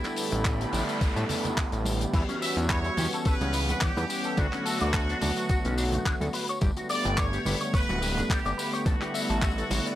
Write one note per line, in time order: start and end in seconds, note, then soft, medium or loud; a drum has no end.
0.00 0.69 D3 medium
0.00 0.70 G3 medium
0.00 0.70 A3 medium
0.00 0.70 B3 medium
0.00 0.17 E4 medium
0.00 0.70 E4 loud
0.00 2.11 A4 medium
0.00 2.11 D5 medium
0.00 2.11 G5 medium
0.00 2.11 B5 medium
0.00 noise sweep medium
0.04 clap soft
0.04 closed hi-hat soft
0.04 tambourine soft
0.04 muted conga medium
0.16 open hi-hat loud
0.16 tambourine medium
0.32 0.66 A1 loud
0.32 closed hi-hat medium
0.32 tambourine soft
0.32 muted conga medium
0.32 high conga medium
0.45 kick loud
0.45 clap loud
0.45 closed hi-hat medium
0.45 tambourine soft
0.61 closed hi-hat soft
0.61 tambourine soft
0.72 0.83 A1 medium
0.72 1.69 D3 medium
0.72 1.69 G3 medium
0.72 1.70 A3 medium
0.72 1.70 B3 medium
0.72 1.70 E4 medium
0.72 open hi-hat loud
0.72 tambourine medium
0.72 low conga medium
0.89 closed hi-hat medium
0.89 tambourine soft
1.01 kick loud
1.01 closed hi-hat medium
1.01 tambourine soft
1.16 1.25 A2 loud
1.16 closed hi-hat soft
1.16 tambourine soft
1.16 high conga medium
1.29 open hi-hat loud
1.29 tambourine medium
1.29 low conga medium
1.45 closed hi-hat medium
1.45 tambourine soft
1.45 low conga loud
1.57 kick loud
1.57 clap loud
1.57 closed hi-hat medium
1.57 tambourine soft
1.72 2.06 A1 loud
1.72 2.10 D3 medium
1.72 2.10 G3 medium
1.72 2.10 A3 medium
1.72 2.10 B3 medium
1.72 2.11 G4 medium
1.72 closed hi-hat soft
1.72 tambourine soft
1.85 open hi-hat medium
1.85 tambourine medium
1.85 high conga medium
2.01 closed hi-hat medium
2.01 tambourine soft
2.12 2.23 E2 loud
2.12 2.94 E3 medium
2.12 2.94 G3 medium
2.12 2.95 B3 medium
2.12 2.95 C#4 medium
2.12 2.21 E4 medium
2.12 2.95 F#4 loud
2.12 kick loud
2.12 closed hi-hat medium
2.12 crash loud
2.12 tambourine soft
2.12 high conga medium
2.29 2.38 C#4 medium
2.29 closed hi-hat soft
2.29 tambourine soft
2.29 muted conga medium
2.42 2.53 B4 medium
2.42 2.55 E5 loud
2.42 open hi-hat loud
2.42 tambourine medium
2.56 2.90 E2 loud
2.56 2.67 E5 medium
2.56 closed hi-hat medium
2.56 tambourine soft
2.56 muted conga medium
2.56 high conga medium
2.70 2.77 B4 medium
2.70 3.16 C#5 loud
2.70 kick loud
2.70 clap loud
2.70 closed hi-hat medium
2.70 tambourine soft
2.84 2.91 E4 medium
2.84 closed hi-hat soft
2.84 tambourine soft
2.97 3.07 E2 loud
2.97 4.34 E3 medium
2.97 4.34 G3 medium
2.97 4.35 B3 medium
2.97 4.35 C#4 medium
2.97 3.09 G4 medium
2.97 4.35 F#5 medium
2.97 open hi-hat loud
2.97 tambourine medium
2.97 high conga medium
2.97 low conga medium
3.13 3.23 A4 medium
3.13 closed hi-hat medium
3.13 tambourine soft
3.20 3.26 C#5 medium
3.25 3.38 C#2 soft
3.25 3.34 A4 medium
3.25 3.82 B4 loud
3.25 kick loud
3.25 closed hi-hat medium
3.25 tambourine soft
3.41 3.74 C#2 medium
3.41 3.51 C#4 medium
3.41 closed hi-hat soft
3.41 tambourine soft
3.41 high conga medium
3.53 3.58 E4 medium
3.53 open hi-hat loud
3.53 tambourine medium
3.69 3.76 B3 medium
3.69 closed hi-hat medium
3.69 tambourine soft
3.69 muted conga medium
3.69 low conga medium
3.81 3.89 E3 loud
3.81 4.38 G4 loud
3.81 kick loud
3.81 clap loud
3.81 closed hi-hat medium
3.81 tambourine soft
3.97 4.05 E2 medium
3.97 4.01 B4 medium
3.97 closed hi-hat medium
3.97 tambourine soft
3.97 muted conga medium
3.97 high conga medium
4.10 4.21 G4 medium
4.10 open hi-hat loud
4.10 tambourine medium
4.24 4.35 A4 medium
4.24 closed hi-hat medium
4.24 tambourine soft
4.36 4.48 D2 loud
4.36 5.18 D3 loud
4.36 5.18 F#3 medium
4.36 5.19 A3 medium
4.36 5.19 B3 medium
4.36 4.45 D4 medium
4.36 5.19 F#4 loud
4.36 6.06 F#4 loud
4.36 kick loud
4.36 closed hi-hat medium
4.36 tambourine soft
4.36 high conga medium
4.53 4.63 C#4 medium
4.53 clap soft
4.53 closed hi-hat soft
4.53 tambourine soft
4.53 muted conga medium
4.65 4.77 A4 medium
4.65 open hi-hat loud
4.65 tambourine medium
4.81 5.14 D2 loud
4.81 4.90 D5 medium
4.81 closed hi-hat medium
4.81 muted conga medium
4.81 high conga medium
4.94 5.01 A4 medium
4.94 kick loud
4.94 clap loud
4.94 closed hi-hat medium
4.94 tambourine soft
5.09 5.15 D4 medium
5.09 closed hi-hat soft
5.09 tambourine soft
5.20 5.32 D2 loud
5.20 6.32 D3 medium
5.20 6.32 F#3 medium
5.20 6.32 A3 medium
5.20 6.32 B3 medium
5.20 5.33 F#4 medium
5.20 6.33 F#4 medium
5.20 open hi-hat loud
5.20 tambourine medium
5.20 high conga loud
5.20 low conga medium
5.37 5.46 F#4 medium
5.37 closed hi-hat medium
5.37 tambourine soft
5.49 5.57 F#4 medium
5.49 kick loud
5.49 closed hi-hat medium
5.49 tambourine soft
5.65 5.99 B1 medium
5.65 5.75 C#4 medium
5.65 closed hi-hat medium
5.65 tambourine soft
5.65 high conga medium
5.78 5.82 D4 medium
5.78 open hi-hat loud
5.78 tambourine medium
5.92 6.00 A3 medium
5.92 closed hi-hat medium
5.92 tambourine soft
5.92 low conga loud
6.06 6.13 D3 loud
6.06 kick loud
6.06 clap loud
6.06 closed hi-hat medium
6.06 tambourine soft
6.20 6.29 D2 medium
6.20 6.25 A4 medium
6.20 closed hi-hat soft
6.20 tambourine soft
6.20 high conga medium
6.33 6.45 B4 medium
6.33 open hi-hat loud
6.33 tambourine medium
6.48 6.59 C#5 medium
6.48 closed hi-hat medium
6.48 tambourine soft
6.61 6.72 G1 loud
6.61 7.42 D3 loud
6.61 7.43 G3 medium
6.61 7.43 A3 medium
6.61 7.43 B3 medium
6.61 6.70 G4 medium
6.61 kick loud
6.61 closed hi-hat medium
6.61 tambourine soft
6.61 high conga loud
6.77 6.87 F#4 medium
6.77 closed hi-hat soft
6.77 tambourine soft
6.77 muted conga medium
6.89 7.16 D5 loud
6.89 7.01 D5 medium
6.89 open hi-hat loud
6.89 tambourine medium
7.05 7.39 G1 loud
7.05 7.15 G5 medium
7.05 closed hi-hat medium
7.05 tambourine soft
7.05 muted conga medium
7.05 high conga medium
7.17 7.74 C#5 loud
7.17 7.26 D5 medium
7.17 kick loud
7.17 clap loud
7.17 closed hi-hat medium
7.17 tambourine soft
7.33 7.40 G4 medium
7.33 closed hi-hat soft
7.33 tambourine soft
7.45 7.56 G1 medium
7.45 8.83 D3 medium
7.45 8.83 G3 medium
7.45 8.83 A3 medium
7.45 8.83 B3 medium
7.45 7.58 B4 medium
7.45 open hi-hat loud
7.45 tambourine medium
7.45 high conga medium
7.45 low conga medium
7.61 7.71 C#5 medium
7.61 closed hi-hat medium
7.61 tambourine soft
7.74 7.86 D1 soft
7.74 8.26 B4 loud
7.74 7.82 C#5 medium
7.74 kick loud
7.74 closed hi-hat medium
7.74 tambourine soft
7.89 8.23 D1 medium
7.89 7.99 F#4 medium
7.89 closed hi-hat soft
7.89 tambourine soft
7.89 high conga medium
8.02 8.07 G4 medium
8.02 open hi-hat loud
8.02 tambourine medium
8.17 8.24 D4 medium
8.17 closed hi-hat medium
8.17 tambourine soft
8.17 muted conga medium
8.17 low conga loud
8.30 8.38 G3 loud
8.30 8.82 G4 loud
8.30 kick loud
8.30 clap loud
8.30 closed hi-hat medium
8.30 tambourine soft
8.45 8.54 G1 medium
8.45 8.49 D5 medium
8.45 closed hi-hat soft
8.45 tambourine soft
8.45 muted conga medium
8.45 high conga medium
8.58 8.70 B4 medium
8.58 open hi-hat loud
8.58 tambourine medium
8.73 8.83 C#5 medium
8.73 closed hi-hat medium
8.73 tambourine soft
8.85 8.96 A1 loud
8.85 9.67 D3 loud
8.85 9.67 G3 medium
8.85 9.67 A3 medium
8.85 9.68 B3 medium
8.85 9.68 E4 loud
8.85 9.95 F#4 medium
8.85 8.94 A4 medium
8.85 kick loud
8.85 closed hi-hat medium
8.85 tambourine soft
8.85 high conga loud
9.01 9.11 G4 medium
9.01 clap soft
9.01 closed hi-hat soft
9.01 tambourine soft
9.01 muted conga soft
9.14 9.26 E5 medium
9.14 open hi-hat loud
9.14 tambourine medium
9.30 9.63 A1 loud
9.30 9.39 A5 medium
9.30 closed hi-hat medium
9.30 tambourine soft
9.30 muted conga soft
9.30 high conga medium
9.42 9.50 E5 medium
9.42 kick loud
9.42 clap loud
9.42 closed hi-hat medium
9.42 tambourine soft
9.58 9.64 A4 medium
9.58 closed hi-hat soft
9.58 tambourine soft
9.69 9.80 A1 loud
9.69 9.95 D3 medium
9.69 9.95 G3 medium
9.69 9.95 A3 medium
9.69 9.95 B3 medium
9.69 9.95 E4 medium
9.69 9.82 C#5 medium
9.69 open hi-hat loud
9.69 tambourine medium
9.69 high conga medium
9.69 low conga medium
9.86 9.95 D5 medium
9.86 closed hi-hat medium
9.86 tambourine soft